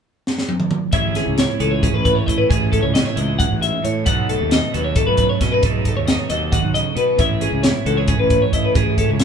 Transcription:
0.27 snare
0.39 snare
0.49 high tom
0.60 mid tom
0.71 mid tom
0.93 fingered electric bass A1, clean electric guitar A2 C#4 E4 G#4 E5, kick, closed hi-hat
1.15 clean electric guitar C#4 G#4, snare, closed hi-hat
1.27 fingered electric bass C#2
1.38 clean electric guitar E4 C#5, snare, closed hi-hat
1.60 fingered electric bass C#2, clean electric guitar E3 G#4 A4, closed hi-hat
1.71 clean electric guitar C#5
1.82 clean electric guitar C#4 G#4, kick, closed hi-hat
1.94 fingered electric bass A1, clean electric guitar B4
2.05 clean electric guitar A2 B4, kick, closed hi-hat
2.15 clean electric guitar C#5
2.26 fingered electric bass A2, clean electric guitar E4 D#5, kick, closed hi-hat
2.38 clean electric guitar B4
2.49 fingered electric bass A1, clean electric guitar A2 C#4 E4 G#4, kick, closed hi-hat
2.72 clean electric guitar C#4 A4, kick, closed hi-hat
2.83 fingered electric bass C#2, clean electric guitar C#5
2.94 clean electric guitar C#4 D#5, snare, closed hi-hat
3.05 clean electric guitar E4 C#5
3.16 fingered electric bass C#2, clean electric guitar E3 G#4 D#5, closed hi-hat
3.39 clean electric guitar F#2 F#5, kick, closed hi-hat
3.51 fingered electric bass A1
3.61 clean electric guitar G#2 E5, closed hi-hat
3.83 clean electric guitar A2 C#5, fingered electric bass A2, closed hi-hat
4.06 fingered electric bass B1, clean electric guitar B2 A3 D#4 A4 F#5, kick, closed hi-hat
4.29 clean electric guitar A3 A4, closed hi-hat
4.41 fingered electric bass D#2
4.51 clean electric guitar D#4 D#5, snare, closed hi-hat
4.74 fingered electric bass D#2, clean electric guitar F#3 A4 B4, closed hi-hat
4.84 clean electric guitar C#5
4.96 clean electric guitar A3 A4, kick, closed hi-hat
5.06 fingered electric bass B1, clean electric guitar B4
5.17 clean electric guitar F#2 B4, kick, closed hi-hat
5.29 clean electric guitar C#5
5.41 fingered electric bass B2, clean electric guitar C#4 D#5, kick, snare, closed hi-hat
5.52 clean electric guitar D#4 B4
5.63 fingered electric bass B1, clean electric guitar B2 A3 D#4 G#4 A4, kick, closed hi-hat
5.85 clean electric guitar A3 A4, kick, closed hi-hat
5.97 fingered electric bass D#2, clean electric guitar C#5
6.07 clean electric guitar D#4 D#5, snare, closed hi-hat
6.19 clean electric guitar C#5
6.30 fingered electric bass D#2, clean electric guitar F#3 A4 D#5, closed hi-hat
6.52 clean electric guitar D#3 F#5, kick, closed hi-hat
6.63 fingered electric bass B1
6.74 clean electric guitar C#3 D#5, closed hi-hat
6.95 clean electric guitar B2 B4, fingered electric bass B2, closed hi-hat
7.18 fingered electric bass A1, clean electric guitar A2 C#4 E4 G#4 E5, kick, closed hi-hat
7.41 clean electric guitar C#4 G#4, closed hi-hat
7.52 fingered electric bass C#2
7.63 clean electric guitar E4 C#5, snare, closed hi-hat
7.85 fingered electric bass C#2, clean electric guitar E3 F#4 A4, closed hi-hat
7.97 clean electric guitar G#4 C#5
8.08 clean electric guitar C#4 G#4, kick, closed hi-hat
8.18 fingered electric bass A1, clean electric guitar B4
8.30 clean electric guitar A2 B4, kick, closed hi-hat
8.42 clean electric guitar C#5
8.53 fingered electric bass A2, clean electric guitar E4 D#5, kick, closed hi-hat
8.64 clean electric guitar B4
8.74 fingered electric bass A1, clean electric guitar A2 C#4 E4 G#4, kick, closed hi-hat
8.98 clean electric guitar C#4 A4, kick, closed hi-hat
9.09 fingered electric bass C#2, clean electric guitar C#5
9.19 clean electric guitar D#5, snare, closed hi-hat

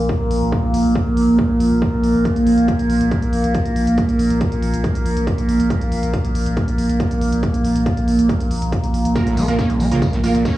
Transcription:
Already playing: synth drone A#2 A#3
0.09 kick
0.20 sub bass A#1
0.31 sub bass A#1, open hi-hat
0.42 sub bass A#1
0.52 kick
0.63 sub bass A#1
0.74 sub bass A#1, open hi-hat
0.85 sub bass A#1
0.96 kick
1.07 sub bass A#1
1.17 sub bass A#1, open hi-hat
1.28 sub bass A#1
1.39 kick
1.50 sub bass A#1
1.60 sub bass A#1, open hi-hat
1.71 sub bass A#1
1.82 kick
1.93 sub bass A#1
2.03 sub bass A#1, open hi-hat
2.14 sub bass A#1
2.25 kick, closed hi-hat
2.36 sub bass A#1, closed hi-hat
2.46 sub bass A#1, open hi-hat
2.58 sub bass A#1, closed hi-hat
2.68 kick, closed hi-hat
2.79 sub bass A#1, closed hi-hat
2.90 sub bass A#1, open hi-hat
3.01 sub bass A#1, closed hi-hat
3.11 kick, closed hi-hat
3.22 sub bass A#1, closed hi-hat
3.33 sub bass A#1, open hi-hat
3.44 sub bass A#1, closed hi-hat
3.54 kick, closed hi-hat
3.66 sub bass A#1, closed hi-hat
3.76 sub bass A#1, open hi-hat
3.87 sub bass A#1, closed hi-hat
3.98 kick, closed hi-hat
4.09 sub bass A#1, closed hi-hat
4.19 sub bass A#1, open hi-hat
4.30 sub bass A#1, closed hi-hat
4.41 kick, closed hi-hat
4.52 sub bass A#1, closed hi-hat
4.62 sub bass A#1, open hi-hat
4.73 sub bass A#1, closed hi-hat
4.84 kick, closed hi-hat
4.95 sub bass A#1, closed hi-hat
5.06 sub bass A#1, open hi-hat
5.17 sub bass A#1, closed hi-hat
5.27 kick, closed hi-hat
5.38 sub bass A#1, closed hi-hat
5.49 sub bass A#1, open hi-hat
5.60 sub bass A#1, closed hi-hat
5.70 kick, closed hi-hat
5.81 sub bass A#1, closed hi-hat
5.92 sub bass A#1, open hi-hat
6.03 sub bass A#1, closed hi-hat
6.13 kick, closed hi-hat
6.24 sub bass A#1, closed hi-hat
6.35 sub bass A#1, open hi-hat
6.46 sub bass A#1, closed hi-hat
6.57 kick, closed hi-hat
6.68 sub bass A#1, closed hi-hat
6.78 sub bass A#1, open hi-hat
6.89 sub bass A#1, closed hi-hat
7.00 kick, closed hi-hat
7.11 sub bass A#1, closed hi-hat
7.21 sub bass A#1, open hi-hat
7.32 sub bass A#1, closed hi-hat
7.43 kick, closed hi-hat
7.54 sub bass A#1, closed hi-hat
7.65 sub bass A#1, open hi-hat
7.76 sub bass A#1, closed hi-hat
7.86 kick, closed hi-hat
7.97 sub bass A#1, closed hi-hat
8.08 sub bass A#1, open hi-hat
8.19 sub bass A#1, closed hi-hat
8.29 kick, closed hi-hat
8.40 sub bass A#1, closed hi-hat
8.51 sub bass A#1, open hi-hat
8.62 sub bass A#1, closed hi-hat
8.72 kick, closed hi-hat
8.84 sub bass A#1, closed hi-hat
8.94 sub bass A#1, open hi-hat
9.05 sub bass A#1, closed hi-hat
9.16 acid bass A#2, synth drone A#2 A#3, synth stab A#3 F4 A#4, kick, closed hi-hat, tambourine
9.27 sub bass A#1, acid bass A2, closed hi-hat
9.37 sub bass A#1, acid bass A3, open hi-hat, tambourine
9.48 sub bass A#1, acid bass A#2, synth stab A#3 F4 A#4, snare, closed hi-hat
9.59 acid bass C#4, kick, snare, closed hi-hat, tambourine
9.70 sub bass A#1, acid bass A2, closed hi-hat
9.80 sub bass A#1, acid bass A3, open hi-hat, tambourine
9.91 sub bass A#1, acid bass C#3, synth stab A#3 F4 A#4, closed hi-hat
10.02 acid bass C#3, kick, closed hi-hat, tambourine
10.13 sub bass A#1, acid bass A2, snare, closed hi-hat
10.23 sub bass A#1, acid bass A#3, synth stab A#3 F4 A#4, open hi-hat, tambourine
10.35 sub bass A#1, acid bass A#2, closed hi-hat
10.45 acid bass C#4, kick, snare, closed hi-hat, tambourine

